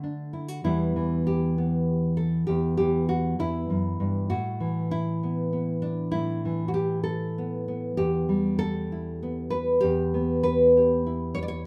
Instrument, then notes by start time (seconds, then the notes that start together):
nylon-string guitar
Already playing: D3 A3 F#4
0.03 D4
0.33 E4
0.48 F#4
0.64 E2 E3 G3 B3 E4
0.96 E3
1.27 G4
1.58 B3
2.17 A4
2.47 E2 G4
2.77 E3 G4
3.09 F#4
3.39 E2 E4
3.70 F#2
4.00 G2
4.30 A2 F#4
4.60 E3
4.91 E4
5.23 B3
5.53 B3
5.82 D4
6.11 A2 E4
6.45 E3
6.68 F#4
6.74 G4
7.04 A4
7.38 B3
7.68 B3
7.97 E2 G4
8.29 G3
8.59 A4
8.92 E4
9.23 B3
9.50 B4
9.81 E2 G4
10.14 B3
10.43 B4
10.77 G4
11.06 E4
11.35 C#5
11.43 D5
11.48 C#5